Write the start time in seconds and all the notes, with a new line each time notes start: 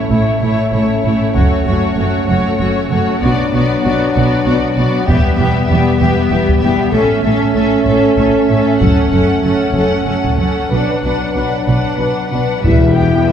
Already playing: A3 C#4 C#5
0.09 A1 A2 E4 C#5
0.14 A3
0.40 A1 A2 A3 E4 C#5
0.72 A1 A2 A3 E4 C#5
1.03 A1 A2 A3 E4 C#5
1.33 F#1 F#2 A3 F#4 C#5, taiko
1.65 F#1 F#2 A3 F#4 C#5
1.96 F#1 F#2 A3 F#4 C#5
2.26 F#1 F#2 A3 F#4 C#5
2.58 F#1 F#2 A3 F#4 C#5
2.90 F#1 F#2 A3 F#4 C#5
3.22 B1 B2 F#3 B3 D4 F#4 D5
3.52 B1 B2 B3 F#4 D5
3.82 B1 B2 B3 F#4 D5
4.11 F#4
4.15 B1 B2 B3 D5
4.45 B1 B2 B3 F#4 D5
4.75 B1 B2 B3 F#4 D5
5.05 E1 E2 G3 B3 G4 E5, taiko
5.36 E1 E2 B3 G4 E5
5.66 G4 E5
5.70 E1 E2 B3
5.98 E1 E2 B3 G4 E5
6.27 E1 G4 E5
6.32 E2 B3
6.48 taiko
6.59 G4 E5
6.63 E1 E2 B3
6.91 A1 A2 A3 C#4 A4 E5
7.23 A1 A2 C#4 A4 E5
7.54 A1 A2 C#4 A4 E5
7.85 A1 A2 C#4 A4 E5
8.16 A1 A2 C#4 A4 E5
8.47 A1 A2 C#4 A4 E5
8.77 F#1 F#2 C#4 A4 F#5
8.81 taiko
9.11 F#1 F#2 C#4 A4 F#5
9.42 F#1 F#2 C#4 A4 F#5
9.74 F#1 F#2 C#4 A4 F#5
10.06 F#1 F#2 C#4 A4 F#5
10.24 taiko
10.38 F#1 F#2 C#4 A4 F#5
10.71 B1 B2 F#3 D4 B4 F#5
11.03 B1 B2 D4 B4 F#5
11.33 B1 B2 D4 B4 F#5
11.65 B1 B2 D4 B4 F#5
11.95 B4
11.99 B1 B2 D4 F#5
12.28 B2 D4 B4 F#5
12.32 B1
12.60 E1 G3 B4 E5
12.64 E2 E4, taiko
12.93 B3 G4 G5
13.24 G3 B4 E5